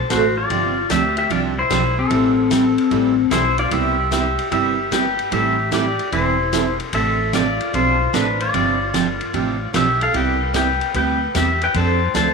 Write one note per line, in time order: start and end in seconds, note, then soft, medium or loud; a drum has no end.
0.00 0.12 A5 loud
0.10 0.44 A1 medium
0.10 0.22 D3 medium
0.10 0.22 A3 medium
0.10 0.22 C4 medium
0.10 0.22 F#4 medium
0.10 0.36 F#4 medium
0.10 0.23 A4 medium
0.10 0.39 C5 medium
0.10 kick soft
0.10 snare medium
0.10 hi-hat pedal medium
0.10 ride medium
0.37 0.87 F4 medium
0.37 0.91 D5 loud
0.50 0.82 G1 medium
0.50 0.73 C3 medium
0.50 0.73 F3 medium
0.50 0.73 C4 medium
0.50 0.73 D4 medium
0.50 0.73 G4 medium
0.50 kick soft
0.50 ride medium
0.89 1.24 D2 medium
0.89 1.02 C3 medium
0.89 1.02 F3 medium
0.89 1.02 C4 medium
0.89 1.02 D4 medium
0.89 1.02 G4 medium
0.89 1.16 G4 medium
0.89 1.16 E5 medium
0.89 kick soft
0.89 snare medium
0.89 hi-hat pedal medium
0.89 ride medium
1.17 1.30 G4 medium
1.17 1.31 E5 medium
1.17 ride soft
1.30 1.65 C2 medium
1.30 1.53 C3 medium
1.30 1.53 F3 medium
1.30 1.53 C4 medium
1.30 1.54 D4 medium
1.30 1.38 F4 medium
1.30 1.53 G4 medium
1.30 1.39 D5 loud
1.30 kick soft
1.30 ride medium
1.59 1.95 E4 medium
1.59 1.96 C5 medium
1.70 2.05 B1 medium
1.70 1.82 C3 medium
1.70 1.83 F3 medium
1.70 1.83 C4 medium
1.70 1.83 D4 medium
1.70 1.83 G4 medium
1.70 kick soft
1.70 snare medium
1.70 hi-hat pedal medium
1.70 ride medium
1.98 3.28 C4 medium
1.98 3.36 A4 medium
2.10 2.75 A1 medium
2.10 2.33 E3 medium
2.10 2.33 G3 medium
2.10 2.33 C4 medium
2.10 2.34 E4 medium
2.10 2.34 A4 medium
2.10 kick soft
2.10 ride medium
2.50 2.63 E3 medium
2.50 2.63 G3 medium
2.50 2.63 C4 medium
2.50 2.63 E4 medium
2.50 2.63 A4 medium
2.50 kick soft
2.50 snare medium
2.50 hi-hat pedal medium
2.50 ride medium
2.78 ride soft
2.91 3.25 A1 medium
2.91 3.14 E3 medium
2.91 3.14 G3 medium
2.91 3.14 C4 medium
2.91 3.14 E4 medium
2.91 3.14 A4 medium
2.91 kick soft
2.91 ride medium
3.31 3.65 B1 medium
3.31 3.43 E3 medium
3.31 3.43 G3 medium
3.31 3.44 C4 medium
3.31 3.44 E4 medium
3.31 3.57 E4 medium
3.31 3.44 A4 medium
3.31 3.59 C5 medium
3.31 kick soft
3.31 snare medium
3.31 hi-hat pedal medium
3.31 ride medium
3.58 3.71 F4 medium
3.58 3.73 D5 medium
3.58 ride soft
3.71 4.36 C2 medium
3.71 3.95 C3 medium
3.71 3.95 G3 medium
3.71 3.95 B3 medium
3.71 3.95 E4 medium
3.71 3.95 G4 medium
3.71 4.10 G4 medium
3.71 4.12 E5 medium
3.71 kick soft
3.71 ride medium
4.11 4.24 C3 medium
4.11 4.24 G3 medium
4.11 4.24 B3 medium
4.11 4.24 E4 medium
4.11 4.24 G4 medium
4.11 4.50 G4 medium
4.11 4.51 E5 medium
4.11 kick soft
4.11 snare medium
4.11 hi-hat pedal medium
4.11 ride medium
4.39 ride soft
4.51 5.16 G1 medium
4.51 4.75 C3 medium
4.51 4.75 G3 medium
4.51 4.75 B3 medium
4.51 4.75 E4 medium
4.51 4.89 G4 medium
4.51 4.75 G4 medium
4.51 4.94 E5 loud
4.51 kick soft
4.51 ride medium
4.91 5.04 C3 medium
4.91 5.04 G3 medium
4.91 5.04 B3 medium
4.91 5.04 E4 medium
4.91 5.04 G4 medium
4.91 5.30 B4 medium
4.91 5.34 G5 medium
4.91 kick soft
4.91 snare medium
4.91 hi-hat pedal medium
4.91 ride medium
5.19 ride soft
5.31 5.96 A1 medium
5.31 5.55 E3 medium
5.31 5.55 G3 medium
5.31 5.55 C4 medium
5.31 5.55 E4 medium
5.31 5.70 G4 medium
5.31 5.55 A4 medium
5.31 5.70 E5 medium
5.31 kick soft
5.31 ride medium
5.71 5.84 E3 medium
5.71 5.84 G3 medium
5.71 5.84 C4 medium
5.71 5.84 E4 medium
5.71 6.10 G4 medium
5.71 5.84 A4 medium
5.71 6.15 D5 medium
5.71 kick soft
5.71 snare medium
5.71 hi-hat pedal soft
5.71 ride medium
5.99 ride soft
6.12 6.77 E1 medium
6.12 6.35 E3 medium
6.12 6.36 G3 medium
6.12 6.35 C4 medium
6.12 6.36 E4 medium
6.12 6.76 E4 medium
6.12 6.36 A4 medium
6.12 6.76 C5 medium
6.12 kick soft
6.12 ride medium
6.52 6.65 E3 medium
6.52 6.65 G3 medium
6.52 6.65 C4 medium
6.52 6.65 E4 medium
6.52 6.65 A4 medium
6.52 kick soft
6.52 snare medium
6.52 hi-hat pedal medium
6.52 ride medium
6.80 ride soft
6.93 7.57 A1 medium
6.93 7.16 C3 medium
6.93 7.16 F3 soft
6.93 7.16 C4 medium
6.93 7.16 D4 medium
6.93 7.16 A4 medium
6.93 7.31 A4 medium
6.93 7.31 E5 loud
6.93 kick soft
6.93 ride medium
7.33 7.45 C3 medium
7.33 7.45 F3 medium
7.33 7.46 C4 medium
7.33 7.46 D4 medium
7.33 7.71 F4 medium
7.33 7.46 A4 medium
7.33 7.75 D5 medium
7.33 kick soft
7.33 snare medium
7.33 hi-hat pedal medium
7.33 ride medium
7.61 ride soft
7.73 8.08 B1 medium
7.73 7.96 C3 medium
7.73 7.96 F3 medium
7.73 7.97 C4 medium
7.73 7.97 D4 medium
7.73 8.12 F4 medium
7.73 7.97 A4 medium
7.73 8.16 C5 medium
7.73 kick soft
7.73 ride medium
8.13 8.48 A1 medium
8.13 8.25 C3 medium
8.13 8.26 F3 medium
8.13 8.26 C4 medium
8.13 8.26 D4 medium
8.13 8.39 D4 medium
8.13 8.26 A4 medium
8.13 8.42 B4 medium
8.13 kick soft
8.13 snare medium
8.13 hi-hat pedal medium
8.13 ride medium
8.40 9.71 F4 medium
8.40 9.71 D5 medium
8.40 ride soft
8.54 9.18 G1 medium
8.54 8.77 C3 medium
8.54 8.77 F3 medium
8.54 8.77 C4 medium
8.54 8.77 D4 medium
8.54 8.77 G4 medium
8.54 kick soft
8.54 ride medium
8.94 9.06 C3 medium
8.94 9.06 F3 medium
8.94 9.06 C4 medium
8.94 9.06 D4 medium
8.94 9.06 G4 medium
8.94 kick soft
8.94 snare medium
8.94 hi-hat pedal medium
8.94 ride medium
9.21 ride soft
9.34 9.68 A1 medium
9.34 9.57 C3 medium
9.34 9.57 F3 medium
9.34 9.57 C4 medium
9.34 9.57 D4 medium
9.34 9.57 G4 medium
9.34 kick soft
9.34 ride medium
9.73 10.08 B1 medium
9.73 9.86 C3 medium
9.73 9.86 F3 medium
9.73 9.86 C4 medium
9.73 9.86 D4 medium
9.73 9.86 G4 medium
9.73 10.00 G4 medium
9.73 10.00 E5 medium
9.73 kick soft
9.73 snare medium
9.73 hi-hat pedal medium
9.73 ride medium
10.01 10.14 A4 medium
10.01 10.16 F5 medium
10.01 ride soft
10.14 10.78 C2 medium
10.14 10.37 C3 medium
10.14 10.37 G3 medium
10.14 10.37 B3 medium
10.14 10.37 E4 medium
10.14 10.37 G4 medium
10.14 10.52 B4 medium
10.14 10.55 G5 medium
10.14 kick soft
10.14 ride medium
10.54 10.66 C3 medium
10.54 10.66 G3 medium
10.54 10.67 B3 medium
10.54 10.67 E4 medium
10.54 10.67 G4 medium
10.54 10.93 B4 medium
10.54 10.93 G5 medium
10.54 kick soft
10.54 snare medium
10.54 hi-hat pedal medium
10.54 ride medium
10.81 ride soft
10.94 11.29 D2 medium
10.94 11.17 C3 medium
10.94 11.17 G3 medium
10.94 11.18 B3 medium
10.94 11.18 E4 medium
10.94 11.18 G4 medium
10.94 11.33 B4 medium
10.94 11.37 G5 medium
10.94 kick soft
10.94 ride medium
11.35 11.69 E2 medium
11.35 11.47 C3 medium
11.35 11.47 G3 medium
11.35 11.47 B3 medium
11.35 11.47 E4 medium
11.35 11.47 G4 medium
11.35 11.61 G4 medium
11.35 11.64 E5 medium
11.35 kick soft
11.35 snare medium
11.35 hi-hat pedal medium
11.35 ride medium
11.61 11.75 B4 medium
11.61 11.76 G5 medium
11.61 ride soft
11.74 12.07 F2 medium
11.74 11.98 F3 soft
11.74 11.98 C4 medium
11.74 11.98 D4 medium
11.74 11.98 A4 medium
11.74 12.13 C5 medium
11.74 12.15 A5 medium
11.74 kick soft
11.74 ride medium
12.14 12.34 D2 medium
12.14 12.27 F3 medium
12.14 12.27 C4 medium
12.14 12.27 D4 medium
12.14 12.27 A4 medium
12.14 12.34 C5 medium
12.14 12.34 A5 medium
12.14 kick soft
12.14 snare medium
12.14 hi-hat pedal medium
12.14 ride medium